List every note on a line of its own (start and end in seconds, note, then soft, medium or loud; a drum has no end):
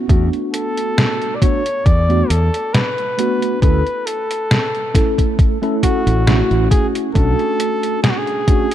0.08 0.28 E2 medium
0.08 1.36 A3 medium
0.08 1.37 B3 medium
0.08 1.37 D4 medium
0.08 1.38 F#4 medium
0.08 kick loud
0.08 closed hi-hat soft
0.33 closed hi-hat soft
0.53 1.37 A4 loud
0.53 closed hi-hat medium
0.77 closed hi-hat soft
0.98 snare loud
0.98 closed hi-hat soft
1.22 closed hi-hat soft
1.35 1.43 D5 medium
1.41 1.61 A3 medium
1.41 1.62 B3 medium
1.41 1.62 D4 medium
1.41 1.62 F#4 medium
1.41 1.87 C#5 loud
1.41 kick loud
1.41 closed hi-hat medium
1.66 closed hi-hat soft
1.85 2.21 E2 medium
1.85 2.31 D5 loud
1.85 kick loud
1.85 closed hi-hat soft
2.09 2.27 A3 medium
2.09 2.27 B3 medium
2.09 2.27 D4 medium
2.09 2.27 F#4 medium
2.09 closed hi-hat soft
2.30 2.49 E2 medium
2.30 2.75 A4 medium
2.30 closed hi-hat medium
2.54 closed hi-hat soft
2.73 3.61 B4 loud
2.73 snare loud
2.73 closed hi-hat soft
2.98 closed hi-hat soft
3.18 3.57 A3 medium
3.18 3.57 B3 medium
3.18 3.58 D4 medium
3.18 3.58 F#4 medium
3.18 closed hi-hat medium
3.42 closed hi-hat soft
3.62 3.81 D2 medium
3.62 3.82 A3 medium
3.62 3.82 C#4 medium
3.62 3.83 E4 medium
3.62 3.83 A4 medium
3.62 4.08 B4 loud
3.62 kick loud
3.62 closed hi-hat soft
3.87 closed hi-hat soft
4.06 5.39 A4 medium
4.06 closed hi-hat medium
4.31 closed hi-hat soft
4.51 snare loud
4.51 closed hi-hat medium
4.75 closed hi-hat soft
4.94 5.57 A3 medium
4.94 5.57 C#4 medium
4.94 5.57 E4 medium
4.94 5.57 A4 medium
4.94 kick medium
4.94 snare soft
4.94 closed hi-hat medium
5.18 kick medium
5.18 closed hi-hat soft
5.39 kick loud
5.39 closed hi-hat soft
5.62 6.22 A3 medium
5.62 6.22 C#4 medium
5.62 6.22 E4 medium
5.62 6.23 A4 loud
5.62 closed hi-hat soft
5.83 6.67 F#4 loud
5.83 kick medium
5.83 closed hi-hat medium
6.07 6.41 A1 medium
6.07 closed hi-hat medium
6.27 7.10 A3 medium
6.27 7.10 C#4 medium
6.27 7.11 E4 medium
6.27 7.11 F#4 loud
6.27 snare loud
6.27 closed hi-hat soft
6.51 6.67 A1 loud
6.51 closed hi-hat soft
6.71 6.87 G#4 loud
6.71 kick loud
6.71 closed hi-hat medium
6.95 closed hi-hat soft
7.14 7.34 B1 medium
7.14 8.42 A3 medium
7.14 8.43 C#4 medium
7.14 8.43 D4 medium
7.14 8.44 F#4 medium
7.14 7.99 A4 loud
7.14 kick loud
7.14 closed hi-hat medium
7.39 closed hi-hat soft
7.60 closed hi-hat medium
7.83 closed hi-hat soft
8.03 8.12 G#4 loud
8.03 snare loud
8.03 closed hi-hat medium
8.11 8.19 F#4 medium
8.18 8.75 G#4 loud
8.27 closed hi-hat soft
8.47 8.67 A3 medium
8.47 8.68 C#4 medium
8.47 8.68 D4 medium
8.47 8.68 F#4 medium
8.47 kick medium
8.47 closed hi-hat medium
8.71 closed hi-hat soft